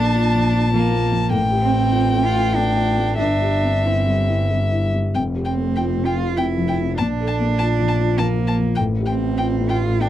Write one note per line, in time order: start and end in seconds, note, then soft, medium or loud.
0.00 1.36 A#1 medium
0.00 1.30 A#2 medium
0.00 0.26 A#3 medium
0.00 0.72 D4 medium
0.00 1.36 A4 medium
0.00 1.30 A5 medium
0.15 0.46 F4 medium
0.34 0.66 F3 soft
0.54 0.86 F4 medium
0.74 1.06 F3 medium
0.74 1.32 A#3 medium
0.91 1.24 F4 medium
1.12 1.33 F3 medium
1.31 3.21 A1 medium
1.31 3.14 A2 medium
1.31 3.15 G5 medium
1.51 1.84 G4 medium
1.62 2.27 C4 loud
1.70 2.04 C4 soft
1.92 2.26 F4 medium
2.13 2.47 A3 medium
2.25 2.57 F4 loud
2.35 2.69 F4 medium
2.55 2.89 A3 medium
2.55 3.18 D4 medium
2.76 3.10 F4 medium
2.98 3.19 A3 soft
3.19 5.16 G1 medium
3.19 5.10 G2 medium
3.19 3.88 D4 medium
3.19 4.90 E5 medium
3.42 3.76 G4 soft
3.63 3.98 C4 soft
3.85 4.50 C4 medium
3.85 4.20 E4 soft
4.07 4.41 G3 soft
4.29 4.63 E4 soft
4.51 4.85 G3 soft
4.72 5.06 E4 soft
4.94 5.15 G3 soft
5.14 7.01 F1 medium
5.14 6.94 F2 medium
5.14 5.23 G5 soft
5.36 5.68 G4 soft
5.45 6.07 C4 medium
5.45 5.53 G5 soft
5.57 5.89 A3 soft
5.76 6.10 F4 soft
5.76 5.84 G5 soft
5.95 6.29 C3 soft
6.06 6.38 F4 medium
6.06 6.14 G5 soft
6.37 6.69 C3 soft
6.37 6.97 E4 medium
6.37 6.45 G5 medium
6.58 6.90 F3 soft
6.68 6.76 G5 soft
6.79 6.99 C3 soft
6.97 8.79 A#1 medium
6.97 8.73 A#2 medium
6.97 8.20 D4 medium
6.97 7.06 A5 medium
7.20 7.51 A4 soft
7.27 7.35 A5 soft
7.40 7.71 A#3 soft
7.59 7.91 F4 medium
7.59 7.67 A5 medium
7.80 8.10 F3 soft
7.88 7.96 A5 soft
8.00 8.30 F4 soft
8.18 8.49 F3 soft
8.18 8.77 A#3 medium
8.18 8.26 A5 medium
8.39 8.69 F4 soft
8.47 8.55 A5 medium
8.59 8.77 F3 soft
8.75 10.09 A1 medium
8.75 10.09 A2 medium
8.75 8.83 G5 medium
9.00 9.31 G4 medium
9.06 9.72 C4 medium
9.06 9.14 G5 soft
9.19 9.50 C4 soft
9.37 9.71 F4 soft
9.37 9.45 G5 soft
9.61 9.92 A3 soft
9.69 10.03 F4 medium
9.69 9.77 G5 soft
9.80 10.09 F4 soft
10.01 10.09 A3 soft
10.01 10.09 D4 medium
10.01 10.09 G5 soft